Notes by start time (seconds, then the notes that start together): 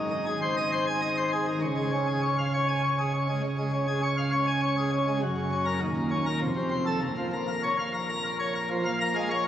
Already playing: G#1 G#2
0.11 D#4
0.26 G#4
0.41 C5
0.57 D#5
0.72 C5
0.87 G#5
1.01 D#5
1.17 C5
1.32 G#4
1.47 D#3
1.61 C#2 C#3
1.77 G#3
1.92 C#4
2.07 G#4
2.23 C#5
2.38 F5
2.54 C#5
2.68 G#5
2.84 C#5
2.98 G#4
3.14 C#4
3.29 G#3
3.43 C#2 C#3
3.58 G#3
3.73 C#4
3.87 G#4
4.03 C#5
4.17 F5
4.32 C#5
4.47 G#5
4.62 C#5
4.77 G#4
4.93 C#4
5.07 G#3
5.22 F#1 F#2
5.37 C#3
5.52 C#4
5.66 A#4
5.81 D#1 D#2
5.96 A#2
6.11 C#4
6.26 A#4
6.41 F1 F2
6.56 C3
6.71 C4
6.86 A4
7.02 A#1 A#2
7.18 F3
7.33 A#3
7.48 A#4
7.63 C#5
7.79 F5
7.94 A#4
8.09 A#5
8.24 A#4
8.40 C#5
8.55 A#4
8.70 F3
8.85 A#1 A#2 F5
9.01 A#3 A#5
9.15 G#3 F5
9.30 A#3 C#5